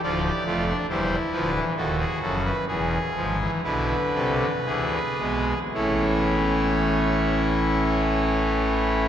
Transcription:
<<
  \new Staff \with { instrumentName = "Pipe organ" } { \time 3/4 \key e \phrygian \tempo 4 = 60 << { d''4 c''8 b'8 a'16 gis'16 a'16 b'16 | r4 b'2 | <e cis' cis''>2. | } \\ { f'16 g'16 f'16 d'16 e'4 fis'4 | gis'4 e'8 a'8 gis'4 | e'2. | } >> }
  \new Staff \with { instrumentName = "Pipe organ" } { \clef bass \time 3/4 \key e \phrygian << { f8 a8 g8 f16 e16 dis8 cis8 | e8 f16 e16 d4 e8 gis8 | a2. | } \\ { <d,, d,>8 <f,, f,>8 <e,, e,>8 <d,, d,>8 <dis,, dis,>8 <fis,, fis,>8 | <e,, e,>8 <gis,, gis,>8 <b,, b,>8 <c, c>8 <d, d>8 <b,, b,>8 | <a,, a,>2. | } >> }
>>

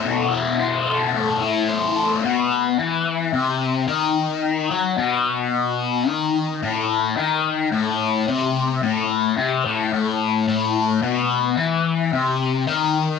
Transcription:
\new Staff \with { instrumentName = "Distorted electric guitar" } { \clef bass \time 4/4 \tempo 4 = 109 <b, a e' a' c''>8 e'8 c''8 a'8 a8 e'8 c''8 a'8 | b,4 e4 c4 dis4~ | dis8 fis8 b,2 dis4 | a,4 dis4 a,4 c4 |
a,4 c8 a,8 a,4 a,4 | b,4 e4 c4 dis4 | }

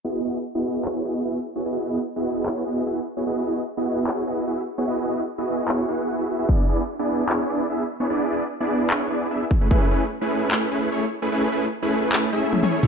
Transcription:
<<
  \new Staff \with { instrumentName = "Supersaw synth" } { \time 4/4 \key e \major \tempo 4 = 149 <b e' fis' gis' dis''>8 <b e' fis' gis' dis''>16 r8 <b e' fis' gis' dis''>8. <b e' fis' gis' cis''>8 <b e' fis' gis' dis''>8 <b e' fis' gis' e''>16 r8 <b e' fis' gis' cis''>16 | <b e' fis' gis' dis''>8 <b e' fis' gis' dis''>16 r8 <b e' fis' gis' dis''>8. <b e' fis' gis' cis''>8 <b e' fis' gis' dis''>8 <b e' fis' gis' e''>16 r8 <b e' fis' gis' cis''>16 | <b e' fis' gis' dis''>8 <b e' fis' gis' dis''>16 r8 <b e' fis' gis' dis''>8. <b e' fis' gis' cis''>8 <b e' fis' gis' dis''>8 <b e' fis' gis' e''>16 r8 <b e' fis' gis' cis''>16 | <b e' fis' gis' dis''>8 <b e' fis' gis' dis''>16 r8 <b e' fis' gis' dis''>8. <b e' fis' gis' cis''>8 <b e' fis' gis' fis''>8. <b e' fis' gis' e''>8 <b e' fis' gis' e''>16 |
<b d' e' gis' d''>8 <b d' e' gis' d''>16 r8 <b d' e' gis' d''>8. <b d' e' gis' cis''>8 <b d' e' gis' d''>8 <b d' e' gis' e''>16 r8 <b d' e' gis' cis''>16 | <b d' e' gis' d''>8 <b d' e' gis' d''>16 r8 <b d' e' gis' d''>8. <b d' e' gis' cis''>8 <b d' e' gis' d''>8 <b d' e' gis' e''>16 r8 <a cis' e' gis' b'>16 | <a cis' e' gis' b'>8 <a cis' e' gis' b'>16 r8 <a cis' e' gis' b'>8. <a cis' e' gis' b'>8 <a cis' e' gis' b'>8 <a cis' e' gis' cis''>16 r8 <a cis' e' gis' b'>16 | <a cis' e' gis' b'>8 <a cis' e' gis' b'>16 r8 <a cis' e' gis' b'>8. <a cis' e' gis' b'>8 <a cis' e' gis' e''>8. <a cis' e' gis' cis''>8 <a cis' e' gis' cis''>16 | }
  \new DrumStaff \with { instrumentName = "Drums" } \drummode { \time 4/4 r4 r4 hc4 r4 | r4 r4 hc4 r4 | r4 r4 hc4 r4 | r4 r4 hc4 r4 |
bd4 r4 hc4 r4 | r4 r4 hc4 r8 bd8 | bd4 r4 hc4 r4 | r4 r4 hc4 tommh16 tommh8 toml16 | }
>>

